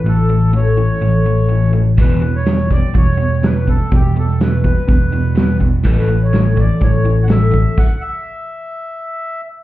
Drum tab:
CC |--------|--------|--------|--------|
HH |--------|x-x-x-x-|x-x-x-x-|x-x-x-x-|
SD |--------|--oo--o-|--o---o-|--oo--o-|
BD |--------|o--oo--o|o--oo--o|o--oo--o|

CC |x-------|
HH |--------|
SD |--------|
BD |o-------|